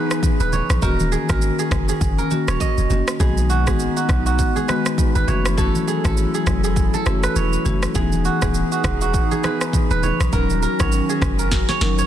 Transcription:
Already playing: E3 B3 D#4 F#4 G#4 B4
0.11 cross-stick, shaker
0.23 kick, high conga, shaker
0.40 D#1 B4, shaker
0.53 C#5, high conga, low conga, shaker
0.70 A#1, cross-stick, shaker
0.82 D#1 D#3 A#3 C#4 F#4 A#4, kick, shaker
1.00 high conga, shaker
1.12 G#4, shaker
1.29 G#1 D#3 A#3 C#4 F#4 A#4, kick, cross-stick, high conga, shaker
1.42 shaker
1.59 G#4, shaker
1.71 F#1, kick, cross-stick, low conga, shaker
1.89 G#4, shaker
2.01 F#1, kick, shaker
2.18 A#4, high conga, shaker
2.31 D#3 A#3 C#4 F#4, high conga, shaker
2.48 D#1 C#5, cross-stick, shaker
2.60 D#5, kick, high conga, shaker
2.78 F#1, shaker
2.90 F#1 D#3 A#3 C#4 F#4, high conga, low conga, shaker
3.08 cross-stick, shaker
3.20 B1 D#3 G#3 B3 D#4 F#4 G#4, kick, shaker
3.37 high conga, shaker
3.50 F#4, shaker
3.67 G#1 D#3 G#3 B3 F#4 G#4, kick, cross-stick, high conga, shaker
3.79 shaker
3.96 F#4, shaker
4.09 B1, kick, cross-stick, low conga, shaker
4.26 F#4, shaker
4.39 kick, shaker
4.56 G#4, high conga, shaker
4.68 D#3 G#3 B3 F#4 B4, cross-stick, high conga, shaker
4.86 cross-stick, shaker
4.98 kick, high conga, shaker
5.15 G#1 B4, shaker
5.28 F#1 E3 F#3 A3 C#4 E4 F#4 A4 C#5, high conga, low conga, shaker
5.46 cross-stick, shaker
5.57 E3 A3 C#4 F#4 A4, kick, shaker
5.75 high conga, shaker
5.87 G#4, shaker
6.04 G#1 E3 A3 C#4 F#4 A4, kick, cross-stick, high conga, shaker
6.17 shaker
6.34 G#4, shaker
6.47 F#1, kick, cross-stick, low conga, shaker
6.64 G#4, shaker
6.76 kick, shaker
6.94 A4, high conga, shaker
7.06 F#1 E3 A3 C#4 F#4, cross-stick, high conga, shaker
7.23 B4, cross-stick, shaker
7.36 E1 C#5, high conga, shaker
7.53 shaker
7.65 F#1 E3 A3 C#4 F#4, high conga, low conga, shaker
7.83 cross-stick, shaker
7.95 E1 E3 B3 D#4 G#4, kick, shaker
8.12 high conga, shaker
8.25 F#4, shaker
8.42 D#1 E3 B3 D#4 G#4, kick, cross-stick, high conga, shaker
8.54 shaker
8.72 F#4, shaker
8.84 E1, kick, cross-stick, low conga, shaker
9.01 F#4, shaker
9.14 kick, shaker
9.31 G#4, high conga, shaker
9.43 E3 B3 D#4 G#4 B4, cross-stick, high conga, shaker
9.61 cross-stick, shaker
9.73 kick, high conga, shaker
9.90 D#1 B4, shaker
10.03 C#5, high conga, low conga, shaker
10.20 A#1, cross-stick, shaker
10.33 D#1 D#3 F#3 C#4 D#4 F#4 A#4, kick, shaker
10.50 high conga, shaker
10.62 A#4, shaker
10.79 G#1 F#3 C#4 D#4 A#4 C#5, kick, cross-stick, high conga, shaker
10.92 shaker
11.09 G#4, shaker
11.22 F#1, kick, cross-stick, low conga, shaker
11.39 A#4, shaker
11.52 kick, snare, shaker
11.69 C#5, snare, high conga, shaker
11.81 F#1 F#3 C#4 D#4 A#4, snare, high conga, shaker
11.98 C#5, shaker

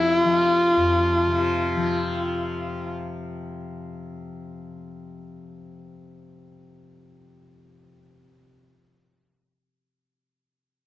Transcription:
Already playing: F2 C3 F3 E4
0.17 F4
0.25 F3
0.76 F2
1.27 C3
1.76 F3

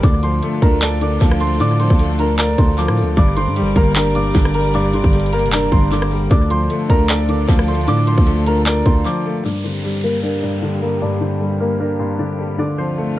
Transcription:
Already playing: A#4 C5 A#5 C6
0.03 D2 D3 D4 F4 A4 D5 D6, kick, closed hi-hat
0.23 F3 C5 C6, closed hi-hat
0.43 A3, closed hi-hat
0.62 D2 D4 A#4 A#5, kick, closed hi-hat
0.82 A4 D5 A5, clap, closed hi-hat
1.01 D3 D5 D6, closed hi-hat
1.21 D2 F3, kick, closed hi-hat
1.31 cross-stick
1.40 A3 C5 C6, closed hi-hat
1.47 closed hi-hat
1.54 closed hi-hat
1.60 A2 D3 D5 D6, closed hi-hat
1.80 F3 C5 C6, closed hi-hat
1.90 D2, kick
1.99 A3, closed hi-hat
2.19 D4 A#4 A#5, closed hi-hat
2.38 A#4 D5 A#5, clap, closed hi-hat
2.58 D2 D3 C5 C6, kick, closed hi-hat
2.78 F3 D5 D6, closed hi-hat
2.88 A2, cross-stick
2.97 A3, open hi-hat
3.03 D2
3.17 G1 G2 G3 G4 A#4 D5 D6, kick, closed hi-hat
3.36 D3 C5 C6, closed hi-hat
3.47 G2
3.56 G3, closed hi-hat
3.61 G1
3.76 G1 A#3 A#4 A#5, kick, closed hi-hat
3.96 D4 A#4 A#5, clap, closed hi-hat
4.15 G2 D5 D6, closed hi-hat
4.35 G1 D3, kick, closed hi-hat
4.45 cross-stick
4.54 G3 A#4 A#5, closed hi-hat
4.61 closed hi-hat
4.67 closed hi-hat
4.74 G2 D5 D6, closed hi-hat
4.93 D3 C5 C6, closed hi-hat
5.04 G1, kick
5.13 G3, closed hi-hat
5.20 closed hi-hat
5.26 closed hi-hat
5.32 A#3 A#4 A#5, closed hi-hat
5.39 F1, closed hi-hat
5.46 closed hi-hat
5.52 D4 A#4 A#5, clap, closed hi-hat
5.72 G1 G2 C5 C6, kick, closed hi-hat
5.92 D3 D5 D6, closed hi-hat
6.02 cross-stick
6.11 G3, open hi-hat
6.31 D2 D3 D4 F4 A4 D5 D6, kick, closed hi-hat
6.50 F3 C5 C6, closed hi-hat
6.70 A3, closed hi-hat
6.89 D2 D4 A#4 A#5, kick, closed hi-hat
7.09 A4 D5 A5, clap, closed hi-hat
7.29 D3 D5 D6, closed hi-hat
7.48 D2 F3, kick, closed hi-hat
7.59 cross-stick
7.68 A3 C5 C6, closed hi-hat
7.75 closed hi-hat
7.81 closed hi-hat
7.88 A2 D3 D5 D6, closed hi-hat
8.07 F3 C5 C6, closed hi-hat
8.18 D2, kick
8.27 A3, closed hi-hat
8.46 D4 A#4 A#5, closed hi-hat
8.66 A#4 D5 A#5, clap, closed hi-hat
8.86 D2 D3 C5 C6, kick, closed hi-hat
9.05 F3 D5 D6
9.25 A3
9.45 G2 D3 A#3 D4 G4 D5, downlifter
9.64 D3 C4 C5
9.84 G3
10.03 A#3 A#4
10.23 A#3 D4 A#4
10.42 G2 D4 D5
10.62 D3
10.82 G3 A#3 A#4
11.02 G2 D4 D5
11.21 D3 C4 C5
11.40 G3
11.60 A#3 A#4
11.80 A#3 D4 A#4
11.99 G2 C4 C5
12.19 D3 D4 D5
12.39 G3
12.58 D2 D3 A3 D4 F4 D5
12.78 F3 C4 C5
12.98 A3

